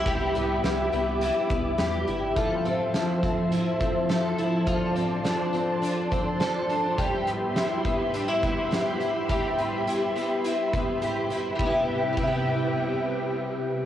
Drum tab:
RD |--------|--------|--------|--------|
HH |xxxxxxxx|xxxxxxxx|xxxxxxxx|xxxxxxxx|
SD |--o---o-|--o---o-|--o---o-|--o---o-|
BD |o----o--|o--o-o--|o----o--|o--o-o--|

RD |--------|x-x-----|
HH |xxxxxxxx|--------|
SD |--------|--------|
BD |o----o--|o-o-----|